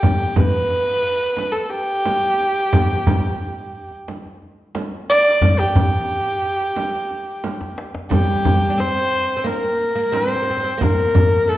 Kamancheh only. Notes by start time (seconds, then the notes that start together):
Already playing: G4
0.37 B4
1.52 A4
1.69 G4
5.10 D5
5.59 G4
8.11 G4
8.79 C5
9.38 C5
9.47 A#4
10.15 C5
10.82 A#4
11.49 A4